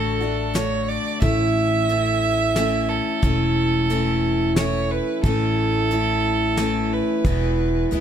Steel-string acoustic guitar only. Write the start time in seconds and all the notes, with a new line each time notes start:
Already playing: D3 A3 D4 F#4
0.21 A3 D4 F#4
0.54 D3 A3 D4 F#4
1.21 A2 E3 A3 C#4 E4
1.89 E3 A3 C#4 E4
2.56 E3 A3 C#4 E4
3.22 A2 E3 A3 C#4 E4
3.90 E3 A3 C#4 E4
4.57 E3 A3 C#4 E4
5.25 A2 E3 A3 C#4 E4
5.91 E3 A3 C#4 E4
6.58 E3 A3 C#4 E4
7.25 E2 B2 E3 G#3 B3 E4
7.91 E3 G#3 B3 E4